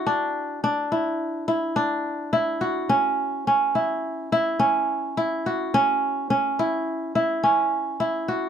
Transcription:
X:1
M:5/4
L:1/8
Q:1/4=106
K:C#phr
V:1 name="Kora"
D2 D E2 E D2 E F | C2 C E2 E C2 E F | C2 C E2 E C2 E F |]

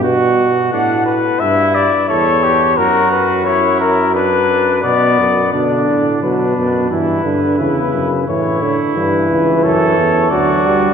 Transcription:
X:1
M:4/4
L:1/8
Q:1/4=88
K:Bphr
V:1 name="Trumpet"
z2 f B e d ^c2 | ^A B ^c A B2 d2 | d2 B2 B4 | ^c2 B2 c2 d2 |]
V:2 name="Trumpet"
F2 D z E2 A G | F2 E2 D2 B,2 | D2 D2 E2 E2 | E4 A2 F2 |]
V:3 name="Trombone" clef=bass
z8 | z8 | D,2 F, B,, E, D, ^C,2 | E, D, E,4 F, G, |]
V:4 name="Bass trombone" clef=bass
B,,2 A,,2 G,, z E,,2 | F,,6 B,, F,, | B,, A,, B,, F,, G,, G,, E,, F,, | A,,2 G,, ^C,, F,, E,, D,,2 |]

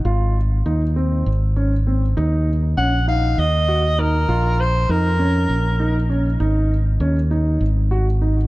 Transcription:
X:1
M:7/8
L:1/8
Q:1/4=99
K:Abmix
V:1 name="Soprano saxophone"
z6 z | z2 g f e2 B- | B c B4 z | z6 z |]
V:2 name="Grand piano"
F2 E C2 D C | E2 D E2 G E | F2 E D2 E D | E2 D E2 G E |]
V:3 name="Fingered electric bass" clef=bass
A,,,2 E,,2 A,,,3 | E,,2 B,,,2 E,,3 | B,,,2 F,,2 B,,,3 | A,,,2 E,,2 A,,,3 |]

